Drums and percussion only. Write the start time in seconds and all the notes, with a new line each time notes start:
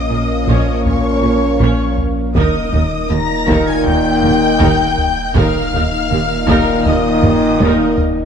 0.47 taiko
0.85 taiko low
1.60 taiko
1.98 taiko low
2.35 taiko
2.73 taiko low
3.47 taiko
3.86 taiko low
4.60 taiko
4.98 taiko low
5.35 taiko
5.74 taiko low
6.48 taiko
6.86 taiko low
7.23 taiko low-mid
7.60 taiko high
7.98 taiko low